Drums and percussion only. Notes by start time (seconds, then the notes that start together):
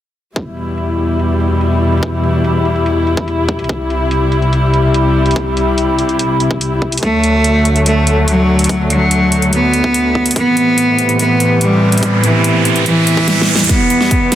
0.36 kick
0.57 closed hi-hat
0.78 closed hi-hat
0.99 closed hi-hat
1.09 closed hi-hat
1.19 closed hi-hat
1.40 closed hi-hat
1.61 closed hi-hat
1.92 closed hi-hat
1.98 closed hi-hat
2.03 kick
2.24 closed hi-hat
2.44 closed hi-hat
2.65 closed hi-hat
2.76 closed hi-hat
2.86 closed hi-hat
3.07 closed hi-hat
3.17 kick
3.28 closed hi-hat
3.49 kick
3.59 closed hi-hat
3.64 closed hi-hat
3.69 kick
3.90 closed hi-hat
4.11 closed hi-hat
4.32 closed hi-hat
4.42 closed hi-hat
4.53 closed hi-hat
4.74 closed hi-hat
4.94 closed hi-hat
5.26 closed hi-hat
5.31 closed hi-hat
5.36 kick, closed hi-hat
5.57 closed hi-hat
5.78 closed hi-hat
5.99 closed hi-hat
6.09 closed hi-hat
6.19 closed hi-hat
6.40 closed hi-hat
6.51 kick
6.61 closed hi-hat
6.82 kick
6.92 closed hi-hat
6.97 closed hi-hat
7.03 kick, closed hi-hat
7.24 closed hi-hat
7.44 closed hi-hat
7.65 closed hi-hat
7.76 closed hi-hat
7.86 closed hi-hat
8.07 closed hi-hat
8.28 closed hi-hat
8.59 closed hi-hat
8.64 closed hi-hat
8.69 kick
8.90 closed hi-hat
9.11 closed hi-hat
9.32 closed hi-hat
9.42 closed hi-hat
9.53 closed hi-hat
9.74 closed hi-hat
9.84 kick
9.94 closed hi-hat
10.15 kick
10.26 closed hi-hat
10.31 closed hi-hat
10.36 kick, closed hi-hat
10.57 closed hi-hat
10.78 closed hi-hat
10.99 closed hi-hat
11.09 closed hi-hat
11.19 closed hi-hat
11.40 closed hi-hat
11.61 closed hi-hat
11.92 closed hi-hat
11.97 closed hi-hat
12.03 kick, closed hi-hat
12.24 closed hi-hat
12.44 closed hi-hat
12.65 closed hi-hat
12.76 closed hi-hat
12.86 closed hi-hat
13.07 closed hi-hat
13.17 kick
13.28 snare, closed hi-hat
13.42 snare
13.55 snare, closed hi-hat
13.64 closed hi-hat
13.69 kick, snare, closed hi-hat
13.90 closed hi-hat
14.01 snare
14.11 kick, closed hi-hat
14.32 snare, closed hi-hat